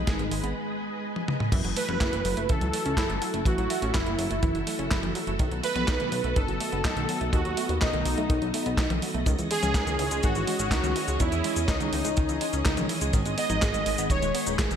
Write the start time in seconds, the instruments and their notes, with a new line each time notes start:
Already playing: string machine G#3 G#4 B4 D#5, analog polysynth D#4
0.07 analog synth bass G#1, synth arpeggio sound G#4, kick, snare, closed hi-hat
0.19 analog synth bass G#1, synth arpeggio sound D#3, closed hi-hat
0.31 analog synth bass G#1, synth arpeggio sound G#3, open hi-hat
0.44 analog synth bass G#1, synth arpeggio sound B3, closed hi-hat
1.16 high tom
1.28 mid tom
1.40 mid tom
1.52 analog synth bass F#1, synth arpeggio sound E3, string machine E4 F#4 A4, kick, closed hi-hat, crash
1.64 analog synth bass F#1, synth arpeggio sound F#3, closed hi-hat
1.76 synth arpeggio sound A3, analog polysynth B4, open hi-hat
1.89 analog synth bass F#1, synth arpeggio sound C#4, closed hi-hat, high tom
2.01 analog synth bass F#1, synth arpeggio sound E4, kick, snare, clap, closed hi-hat
2.13 analog synth bass F#1, synth arpeggio sound E3, closed hi-hat
2.25 analog synth bass F#1, synth arpeggio sound F#3, open hi-hat
2.37 analog synth bass F#1, synth arpeggio sound A3, closed hi-hat
2.49 analog synth bass C#2, synth arpeggio sound E3, analog polysynth A4, kick, closed hi-hat
2.61 analog synth bass C#2, synth arpeggio sound F#3, closed hi-hat
2.73 synth arpeggio sound A3, open hi-hat
2.86 analog synth bass C#2, synth arpeggio sound C#4, closed hi-hat
2.97 analog synth bass F#1, synth arpeggio sound E4, kick, snare, clap, closed hi-hat
3.10 analog synth bass F#1, synth arpeggio sound E3, closed hi-hat
3.22 synth arpeggio sound F#3, open hi-hat
3.34 analog synth bass F#1, synth arpeggio sound A3, closed hi-hat
3.45 analog synth bass A1, synth arpeggio sound E3, analog polysynth F#4, kick, closed hi-hat
3.58 analog synth bass A1, synth arpeggio sound F#3, closed hi-hat
3.70 synth arpeggio sound A3, open hi-hat
3.82 analog synth bass A1, synth arpeggio sound C#4, closed hi-hat
3.94 analog synth bass F#1, analog polysynth E4, synth arpeggio sound E4, kick, snare, clap, closed hi-hat
4.06 analog synth bass F#1, synth arpeggio sound E3, closed hi-hat
4.19 analog synth bass F#1, synth arpeggio sound F#3, open hi-hat
4.31 analog synth bass F#1, synth arpeggio sound A3, closed hi-hat
4.43 analog synth bass F#1, synth arpeggio sound E3, kick, closed hi-hat
4.55 analog synth bass F#1, synth arpeggio sound F#3, closed hi-hat
4.67 synth arpeggio sound A3, open hi-hat
4.79 analog synth bass F#1, synth arpeggio sound C#4, closed hi-hat
4.91 analog synth bass F#1, synth arpeggio sound E4, kick, snare, clap, closed hi-hat
5.03 analog synth bass F#1, synth arpeggio sound E3, closed hi-hat, high tom
5.15 synth arpeggio sound F#3, open hi-hat
5.27 analog synth bass F#1, synth arpeggio sound A3, closed hi-hat
5.39 analog synth bass B1, synth arpeggio sound D#3, string machine B3 D#5, kick, closed hi-hat
5.51 analog synth bass B1, synth arpeggio sound F#3, closed hi-hat
5.64 synth arpeggio sound A3, analog polysynth B4, open hi-hat
5.76 analog synth bass B1, synth arpeggio sound B3, closed hi-hat, high tom
5.88 analog synth bass B1, synth arpeggio sound D#4, kick, snare, clap, closed hi-hat
6.00 analog synth bass B1, synth arpeggio sound D#3, closed hi-hat
6.12 analog synth bass B1, synth arpeggio sound F#3, open hi-hat
6.24 analog synth bass B1, synth arpeggio sound A3, closed hi-hat
6.36 analog synth bass F#1, synth arpeggio sound D#3, analog polysynth A4, kick, closed hi-hat
6.48 analog synth bass F#1, synth arpeggio sound F#3, closed hi-hat
6.60 synth arpeggio sound A3, open hi-hat
6.73 analog synth bass F#1, synth arpeggio sound B3, closed hi-hat
6.85 analog synth bass B1, synth arpeggio sound D#4, kick, snare, clap, closed hi-hat
6.97 analog synth bass B1, synth arpeggio sound D#3, closed hi-hat
7.09 synth arpeggio sound F#3, open hi-hat
7.21 analog synth bass B1, synth arpeggio sound A3, closed hi-hat
7.33 analog synth bass D#2, synth arpeggio sound D#3, analog polysynth F#4, kick, closed hi-hat
7.45 analog synth bass D#2, synth arpeggio sound F#3, closed hi-hat
7.57 synth arpeggio sound A3, open hi-hat
7.69 analog synth bass D#2, synth arpeggio sound B3, closed hi-hat
7.81 analog synth bass B1, synth arpeggio sound D#4, analog polysynth D#4, kick, snare, clap, closed hi-hat
7.93 analog synth bass B1, synth arpeggio sound D#3, closed hi-hat
8.05 analog synth bass B1, synth arpeggio sound F#3, open hi-hat
8.18 analog synth bass B1, synth arpeggio sound A3, closed hi-hat
8.30 analog synth bass B1, synth arpeggio sound D#3, kick, closed hi-hat
8.42 analog synth bass B1, synth arpeggio sound F#3, closed hi-hat
8.54 synth arpeggio sound A3, open hi-hat
8.66 analog synth bass B1, synth arpeggio sound B3, closed hi-hat
8.77 analog synth bass B1, synth arpeggio sound D#4, kick, snare, clap, closed hi-hat
8.90 analog synth bass B1, synth arpeggio sound D#3, closed hi-hat, high tom
9.02 synth arpeggio sound F#3, open hi-hat
9.14 analog synth bass B1, synth arpeggio sound A3, closed hi-hat
9.26 analog synth bass C#2, synth arpeggio sound D#3, string machine C#4 G#4 C#5, kick, closed hi-hat, cabasa
9.39 analog synth bass C#2, synth arpeggio sound E3, closed hi-hat, cabasa
9.51 synth arpeggio sound G#3, analog polysynth G#4, open hi-hat
9.63 analog synth bass C#2, synth arpeggio sound C#4, closed hi-hat, high tom, cabasa
9.74 analog synth bass C#2, synth arpeggio sound D#4, kick, snare, clap, closed hi-hat, cabasa
9.87 analog synth bass C#2, synth arpeggio sound D#3, closed hi-hat, cabasa
9.99 analog synth bass C#2, synth arpeggio sound E3, open hi-hat
10.11 analog synth bass C#2, synth arpeggio sound G#3, closed hi-hat, cabasa
10.23 analog synth bass G#1, synth arpeggio sound D#3, analog polysynth F#4, kick, closed hi-hat, cabasa
10.35 analog synth bass G#1, synth arpeggio sound E3, closed hi-hat, cabasa
10.47 synth arpeggio sound G#3, open hi-hat
10.59 analog synth bass G#1, synth arpeggio sound C#4, closed hi-hat, cabasa
10.71 analog synth bass C#2, synth arpeggio sound D#4, kick, snare, clap, closed hi-hat, cabasa
10.84 analog synth bass C#2, synth arpeggio sound D#3, closed hi-hat, cabasa
10.96 synth arpeggio sound E3, open hi-hat
11.08 analog synth bass C#2, synth arpeggio sound G#3, closed hi-hat, cabasa
11.20 analog synth bass E2, synth arpeggio sound D#3, analog polysynth E4, kick, closed hi-hat, cabasa
11.32 analog synth bass E2, synth arpeggio sound E3, closed hi-hat, cabasa
11.44 synth arpeggio sound G#3, open hi-hat
11.56 analog synth bass E2, synth arpeggio sound C#4, closed hi-hat, cabasa
11.68 analog synth bass C#2, analog polysynth D#4, synth arpeggio sound D#4, kick, snare, clap, closed hi-hat, cabasa
11.81 analog synth bass C#2, synth arpeggio sound D#3, closed hi-hat, cabasa
11.93 analog synth bass C#2, synth arpeggio sound E3, open hi-hat
12.05 analog synth bass C#2, synth arpeggio sound G#3, closed hi-hat, cabasa
12.17 analog synth bass C#2, synth arpeggio sound D#3, kick, closed hi-hat, cabasa
12.29 analog synth bass C#2, synth arpeggio sound E3, closed hi-hat, cabasa
12.41 synth arpeggio sound G#3, open hi-hat
12.53 analog synth bass C#2, synth arpeggio sound C#4, closed hi-hat, cabasa
12.65 analog synth bass C#2, synth arpeggio sound D#4, kick, snare, clap, closed hi-hat, cabasa
12.77 analog synth bass C#2, synth arpeggio sound D#3, closed hi-hat, high tom, cabasa
12.89 synth arpeggio sound E3, open hi-hat
13.01 analog synth bass C#2, synth arpeggio sound G#3, closed hi-hat, cabasa
13.13 analog synth bass G#1, synth arpeggio sound D#3, string machine G#3 B4, kick, closed hi-hat, cabasa
13.26 analog synth bass G#1, synth arpeggio sound G#3, closed hi-hat, cabasa
13.38 synth arpeggio sound B3, analog polysynth D#5, open hi-hat
13.50 analog synth bass G#1, synth arpeggio sound D#4, closed hi-hat, high tom, cabasa
13.62 analog synth bass G#1, synth arpeggio sound G#4, kick, snare, clap, closed hi-hat, cabasa
13.74 analog synth bass G#1, synth arpeggio sound D#3, closed hi-hat, cabasa
13.86 analog synth bass G#1, synth arpeggio sound G#3, open hi-hat
13.98 analog synth bass G#1, synth arpeggio sound B3, closed hi-hat, cabasa
14.10 analog synth bass D#1, synth arpeggio sound D#3, analog polysynth C#5, kick, closed hi-hat, cabasa
14.22 analog synth bass D#1, synth arpeggio sound G#3, closed hi-hat, cabasa
14.35 synth arpeggio sound B3, open hi-hat
14.47 analog synth bass D#1, synth arpeggio sound D#4, closed hi-hat, cabasa
14.59 analog synth bass G#1, synth arpeggio sound G#4, kick, snare, clap, closed hi-hat, cabasa
14.71 analog synth bass G#1, synth arpeggio sound D#3, closed hi-hat, cabasa